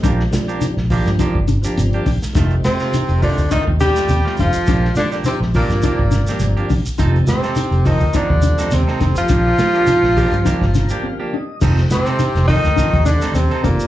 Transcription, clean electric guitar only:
X:1
M:4/4
L:1/16
Q:"Swing 16ths" 1/4=104
K:Fmix
V:1 name="Clean electric guitar"
[F,B,DG] z2 [B,DG] z2 [F,B,DG] z [F,B,DG] z2 [B,DG] z [B,DG] z2 | [E,A,CF] z2 [A,CF] z2 [E,A,CF] z [E,A,CF] z2 [A,CF] z [A,CF] z2 | [F,B,DG] z2 [B,DG] z2 [F,B,DG] z [F,B,DG] z2 [B,DG] z [B,DG] z2 | [F,CEA] z2 [CEA] z2 [F,CEA] z [F,CEA] z2 [CEA] z [CEA] z2 |
[F,B,DG] z2 [B,DG] z2 [F,B,DG] z [F,B,DG] z2 [B,DG] z [B,DG] z2 | [F,CEA] z2 [CEA] z2 [F,CEA] z [F,CEA] z2 [CEA] z [CEA] z2 |]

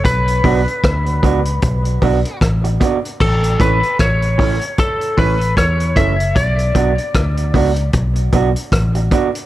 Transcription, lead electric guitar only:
X:1
M:4/4
L:1/8
Q:"Swing 16ths" 1/4=76
K:Bm
V:1 name="Lead electric guitar"
B6 z2 | A B c2 A B c e | d4 z4 |]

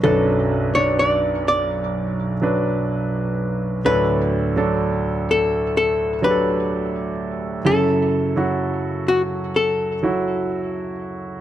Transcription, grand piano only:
X:1
M:4/4
L:1/16
Q:1/4=63
K:Bm
V:1 name="Grand piano"
[F,DB]3 [F,Dd]6- [F,Dd] [F,DB]6 | [F,DA]3 [F,DA]6- [F,DA] [F,DGA]6 | [F,EA]3 [F,EF]6- [F,EF] [F,EF]6 |]
V:2 name="Grand piano" clef=bass
[B,,,F,,]16 | [D,,A,,]16 | [F,,C,]16 |]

